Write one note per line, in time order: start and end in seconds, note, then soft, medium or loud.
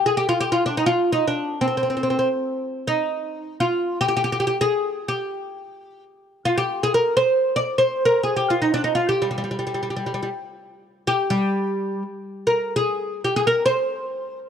0.06 0.17 G#4 medium
0.17 0.28 G4 medium
0.29 0.40 F4 medium
0.41 0.52 G4 medium
0.52 0.65 F4 medium
0.66 0.77 D4 medium
0.77 0.86 D#4 medium
0.86 1.12 F4 medium
1.13 1.27 D#4 medium
1.28 1.61 D4 medium
1.61 1.66 C4 medium
1.68 1.76 C4 soft
1.77 1.82 C4 soft
1.83 1.89 C4 soft
1.90 1.96 C4 soft
1.97 2.02 C4 soft
2.03 2.09 C4 soft
2.10 2.18 C4 soft
2.19 2.28 C4 soft
2.87 3.60 D#4 medium
3.60 4.00 F4 medium
4.01 4.07 G4 medium
4.08 4.15 G4 medium
4.17 4.23 G4 medium
4.24 4.31 G4 medium
4.32 4.39 G4 medium
4.40 4.46 G4 medium
4.47 4.56 G4 medium
4.61 5.08 G#4 medium
5.08 6.03 G4 medium
6.45 6.57 F4 medium
6.58 6.83 G4 medium
6.83 6.94 G#4 medium
6.94 7.16 A#4 medium
7.17 7.55 C5 medium
7.56 7.78 D5 medium
7.78 8.02 C5 medium
8.05 8.21 A#4 medium
8.23 8.36 G#4 medium
8.37 8.49 G4 medium
8.50 8.61 F4 medium
8.62 8.72 D#4 medium
8.74 8.84 D4 medium
8.84 8.95 D#4 medium
8.95 9.08 F4 medium
9.09 9.23 G4 medium
9.22 9.28 G3 medium
9.31 9.37 G3 soft
9.38 9.43 G3 soft
9.44 9.50 G3 soft
9.51 9.58 G3 soft
9.59 9.66 G3 soft
9.67 9.73 G3 soft
9.74 9.81 G3 soft
9.83 9.89 G3 soft
9.90 9.95 G3 soft
9.96 10.04 G3 soft
10.06 10.12 G3 soft
10.14 10.20 G3 soft
10.23 10.28 G3 soft
11.07 11.32 G4 medium
11.30 12.02 G3 medium
12.47 12.76 A#4 medium
12.76 13.20 G#4 medium
13.24 13.36 G4 medium
13.36 13.46 G#4 medium
13.47 13.65 A#4 medium
13.66 14.39 C5 medium